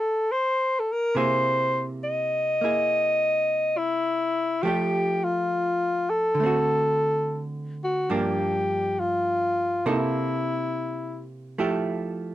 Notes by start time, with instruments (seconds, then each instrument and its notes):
Already playing: hollow-body jazz guitar G3 A#3 F4
0.00 alto saxophone A4
0.32 alto saxophone C5
0.80 alto saxophone A4
0.92 alto saxophone A#4
1.15 hollow-body jazz guitar C3 A#3 E4 G#4, alto saxophone C5
2.04 alto saxophone D#5
2.61 hollow-body jazz guitar A#3 E4 G#4
3.78 alto saxophone E4
4.63 hollow-body jazz guitar F3 A3, alto saxophone G4
4.67 hollow-body jazz guitar G4
5.24 alto saxophone F4
6.10 alto saxophone A4
6.35 hollow-body jazz guitar D3
6.40 hollow-body jazz guitar A3 C4
6.46 hollow-body jazz guitar F#4
7.84 alto saxophone F#4
8.10 hollow-body jazz guitar G2 F3 A#3 D4, alto saxophone G4
8.99 alto saxophone F4
9.86 hollow-body jazz guitar C3 A#3 E4 A4, alto saxophone E4
11.58 hollow-body jazz guitar F3 A3 E4 G4